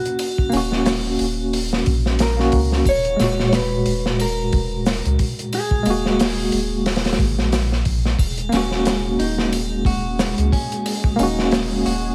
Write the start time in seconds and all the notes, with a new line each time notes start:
Already playing: A#3 C#4 F#4
0.05 closed hi-hat
0.19 open hi-hat, triangle
0.38 kick
0.50 D#1 A#3 C#4, triangle
0.54 F#4, open hi-hat
0.72 snare
0.86 snare, open hi-hat, shaker
1.19 D#1, open hi-hat
1.53 open hi-hat
1.73 snare
1.86 A#1, kick, open hi-hat
2.06 snare
2.19 A#4, snare, open hi-hat, shaker
2.37 A#3 C#4 F#4, snare
2.52 C#2, kick, open hi-hat
2.72 snare
2.85 D#1 C#5, kick, open hi-hat, triangle
3.05 closed hi-hat
3.16 D#1 A#2 G#3, snare, open hi-hat, triangle
3.24 F#4
3.39 snare
3.49 C#5, snare, open hi-hat
3.53 B4, shaker
3.86 D#1, open hi-hat
4.06 snare
4.20 A#4, open hi-hat, triangle
4.53 D#1, kick, open hi-hat
4.86 snare, open hi-hat, shaker
5.05 C#2, closed hi-hat
5.19 kick, open hi-hat
5.39 closed hi-hat
5.53 G#4, open hi-hat, triangle
5.71 kick
5.83 D#1 G#3 A#3, open hi-hat, triangle
5.90 F#4
6.06 snare
6.20 snare, open hi-hat, shaker
6.52 D#1, open hi-hat
6.86 snare, open hi-hat
6.96 snare, open hi-hat
7.05 snare, open hi-hat
7.13 snare, open hi-hat
7.19 G#1, kick, open hi-hat
7.39 A#1, snare
7.52 snare, open hi-hat, shaker
7.72 snare
7.85 A#1, kick, open hi-hat
8.05 snare
8.19 D#1 G#3 G#4, kick, open hi-hat, triangle
8.38 closed hi-hat
8.49 D#1 A#3 C#4, snare, open hi-hat, triangle
8.57 F#4
8.71 snare
8.85 snare, open hi-hat, shaker
9.19 D#1 D#4, open hi-hat
9.38 snare
9.53 open hi-hat, triangle
9.85 D#1 F#4, kick, open hi-hat
10.19 snare, open hi-hat, shaker
10.38 C#2, closed hi-hat
10.52 C#4, kick, open hi-hat
10.72 closed hi-hat
10.86 open hi-hat, triangle
11.04 kick
11.16 D#1 A#3 C#4 D#4, open hi-hat, triangle
11.23 F#4
11.39 snare
11.51 snare, open hi-hat, shaker
11.86 D#1 F#4, open hi-hat